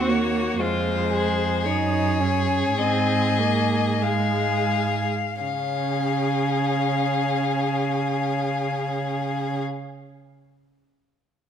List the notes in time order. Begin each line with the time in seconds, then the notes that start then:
Already playing: D#2 F#4 C5
0.08 A#3 C#5
0.59 F2 G#3 F4 C5
1.13 G#4
1.65 F#2 D#4 G#4 C#5
2.20 C#4
2.77 G#2 C4 D#5
3.39 A#3
4.02 G#3 G#4 F5
5.40 C#3 C#4 G#4 F5